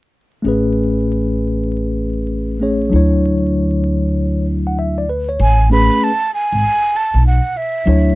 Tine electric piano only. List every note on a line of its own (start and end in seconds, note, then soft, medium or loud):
0.42 2.56 A3 medium
0.42 2.57 C#4 medium
0.47 2.58 G#4 medium
0.47 2.59 B4 medium
2.60 2.92 A3 soft
2.60 2.92 C#4 soft
2.60 2.93 G#4 soft
2.60 2.93 C#5 medium
2.90 5.03 F#3 medium
2.90 5.04 D4 medium
2.94 5.05 E4 medium
2.94 4.46 C#5 medium
4.67 4.77 F#5 medium
4.79 4.97 E5 medium
4.98 5.08 D5 medium
5.09 5.28 B4 medium
5.29 5.58 C#5 medium
5.70 6.09 A3 medium
5.70 6.10 C#4 medium
5.70 6.10 G#4 medium
5.70 6.11 B4 medium
7.86 8.15 F#3 medium
7.86 8.15 D4 medium
7.86 8.15 E4 medium
7.86 8.15 C#5 medium